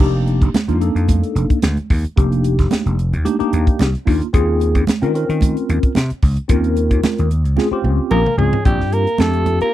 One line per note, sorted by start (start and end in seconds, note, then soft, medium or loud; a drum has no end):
0.00 0.39 F1 loud
0.00 0.48 A#3 medium
0.00 0.48 D4 medium
0.00 0.48 D#4 medium
0.00 0.48 G4 medium
0.00 kick loud
0.00 crash medium
0.27 closed hi-hat medium
0.27 muted conga soft
0.41 0.53 F1 medium
0.41 kick medium
0.41 closed hi-hat soft
0.54 muted slap bass stroke soft
0.54 snare loud
0.54 closed hi-hat medium
0.54 high conga medium
0.68 0.94 F2 medium
0.68 0.77 A#3 medium
0.68 0.77 D4 medium
0.68 0.78 D#4 medium
0.68 0.78 F4 medium
0.68 closed hi-hat soft
0.80 1.58 A#3 medium
0.80 1.58 D4 medium
0.80 1.58 D#4 medium
0.80 1.58 A4 medium
0.80 closed hi-hat medium
0.80 muted conga soft
0.95 1.21 F2 medium
0.95 closed hi-hat soft
1.08 kick medium
1.08 closed hi-hat medium
1.08 muted conga soft
1.08 high conga medium
1.23 closed hi-hat soft
1.35 1.49 F1 medium
1.35 closed hi-hat medium
1.50 kick medium
1.50 closed hi-hat soft
1.62 1.77 D2 medium
1.62 snare loud
1.62 closed hi-hat medium
1.62 high conga medium
1.77 muted slap bass stroke soft
1.77 closed hi-hat soft
1.90 2.04 D#2 loud
1.90 kick medium
1.90 open hi-hat medium
2.04 muted slap bass stroke soft
2.04 closed hi-hat soft
2.16 2.56 F1 loud
2.16 2.93 A#3 medium
2.16 2.94 D4 medium
2.16 2.94 D#4 medium
2.16 2.94 G4 medium
2.16 kick loud
2.16 closed hi-hat medium
2.16 muted conga soft
2.32 closed hi-hat soft
2.44 closed hi-hat medium
2.44 muted conga soft
2.59 2.71 F1 medium
2.59 kick medium
2.59 snare soft
2.59 closed hi-hat soft
2.71 snare loud
2.71 closed hi-hat medium
2.71 high conga medium
2.86 3.14 F1 medium
2.86 closed hi-hat soft
2.99 closed hi-hat medium
2.99 muted conga soft
3.13 3.25 D#2 medium
3.13 closed hi-hat soft
3.24 3.35 A#3 medium
3.24 3.35 D4 medium
3.24 3.35 D#4 medium
3.24 3.35 G4 medium
3.24 closed hi-hat medium
3.24 muted conga soft
3.24 high conga medium
3.39 3.87 A#3 medium
3.39 3.87 D4 medium
3.39 3.87 D#4 medium
3.39 3.87 G4 loud
3.39 muted slap bass stroke soft
3.39 closed hi-hat soft
3.53 3.66 D#2 medium
3.53 closed hi-hat medium
3.67 kick medium
3.67 closed hi-hat soft
3.79 3.93 C2 medium
3.79 snare loud
3.79 closed hi-hat medium
3.79 high conga medium
3.95 muted slap bass stroke soft
3.95 closed hi-hat soft
4.06 4.20 D#2 medium
4.06 4.25 A#3 medium
4.06 4.26 D4 medium
4.06 4.26 D#4 medium
4.06 4.26 F4 medium
4.06 kick medium
4.06 open hi-hat medium
4.22 muted slap bass stroke soft
4.22 closed hi-hat soft
4.33 4.73 D#2 loud
4.33 4.81 C4 medium
4.33 4.82 C#4 medium
4.33 4.82 F4 medium
4.33 4.82 G#4 loud
4.33 kick medium
4.33 closed hi-hat medium
4.33 muted conga soft
4.60 closed hi-hat medium
4.60 muted conga soft
4.75 4.87 D#2 medium
4.75 kick medium
4.75 closed hi-hat soft
4.87 muted slap bass stroke soft
4.87 snare loud
4.87 closed hi-hat medium
4.87 high conga medium
5.02 5.28 D#3 medium
5.02 5.11 C4 medium
5.02 5.11 C#4 medium
5.02 5.11 F4 medium
5.02 5.11 A#4 loud
5.02 closed hi-hat soft
5.14 5.91 C4 medium
5.14 5.91 C#4 medium
5.14 5.91 F4 medium
5.14 5.92 A#4 medium
5.14 closed hi-hat medium
5.14 muted conga soft
5.29 5.55 D#3 medium
5.29 closed hi-hat soft
5.41 kick medium
5.41 closed hi-hat medium
5.41 muted conga soft
5.41 high conga medium
5.57 closed hi-hat soft
5.69 5.82 D#2 medium
5.69 closed hi-hat medium
5.83 kick medium
5.83 closed hi-hat soft
5.95 6.09 C3 medium
5.95 snare loud
5.95 closed hi-hat medium
5.95 high conga medium
6.10 muted slap bass stroke soft
6.10 closed hi-hat soft
6.22 6.36 C#2 medium
6.22 kick medium
6.22 open hi-hat medium
6.37 muted slap bass stroke soft
6.37 closed hi-hat soft
6.48 6.88 D#2 loud
6.48 7.26 C4 medium
6.48 7.26 C#4 medium
6.48 7.26 F4 medium
6.48 7.27 A#4 medium
6.48 kick loud
6.48 closed hi-hat medium
6.48 muted conga soft
6.64 closed hi-hat soft
6.76 closed hi-hat medium
6.76 muted conga soft
6.90 7.03 D#2 medium
6.90 kick medium
6.90 closed hi-hat soft
7.03 muted slap bass stroke soft
7.03 snare loud
7.03 closed hi-hat medium
7.03 high conga medium
7.18 7.46 D#2 medium
7.18 closed hi-hat soft
7.30 closed hi-hat medium
7.30 muted conga soft
7.45 7.57 C#2 medium
7.45 closed hi-hat soft
7.57 7.67 C4 medium
7.57 7.67 C#4 medium
7.57 7.68 F4 medium
7.57 7.68 G#4 medium
7.57 snare medium
7.57 muted conga soft
7.57 high conga medium
7.71 8.19 C4 medium
7.71 8.19 C#4 medium
7.71 8.20 F4 medium
7.71 8.20 G4 loud
7.71 muted slap bass stroke soft
7.84 7.98 C#2 loud
7.84 high tom medium
8.11 8.25 A#1 medium
8.11 8.37 A#3 medium
8.11 8.36 A#4 medium
8.11 8.36 G#5 medium
8.11 mid tom medium
8.11 high conga medium
8.25 muted slap bass stroke soft
8.25 mid tom medium
8.37 8.51 C#2 medium
8.37 8.64 G#3 medium
8.37 8.58 C4 medium
8.37 8.58 C#4 medium
8.37 8.58 F4 medium
8.37 8.63 G#4 medium
8.37 8.58 G#4 medium
8.37 8.64 C#5 medium
8.37 floor tom medium
8.52 muted slap bass stroke soft
8.52 floor tom medium
8.64 8.81 A#1 medium
8.64 8.94 G3 medium
8.64 9.04 C4 medium
8.64 9.04 D4 medium
8.64 9.04 F4 medium
8.64 8.94 G4 medium
8.64 9.05 G4 medium
8.64 kick medium
8.64 closed hi-hat medium
8.64 muted conga soft
8.79 9.05 G2 medium
8.79 snare soft
8.92 9.21 A#3 medium
8.92 9.22 A#4 medium
8.92 closed hi-hat medium
9.07 closed hi-hat soft
9.18 9.59 F2 medium
9.18 9.60 A3 medium
9.18 9.67 C4 medium
9.18 9.68 D4 medium
9.18 9.68 F4 medium
9.18 9.68 G4 medium
9.18 9.61 A4 medium
9.18 snare loud
9.18 closed hi-hat medium
9.18 high conga loud
9.33 closed hi-hat soft
9.46 closed hi-hat medium
9.46 muted conga soft
9.46 high conga medium
9.61 9.74 A#3 medium
9.61 9.74 A#4 medium
9.61 muted slap bass stroke soft
9.61 closed hi-hat soft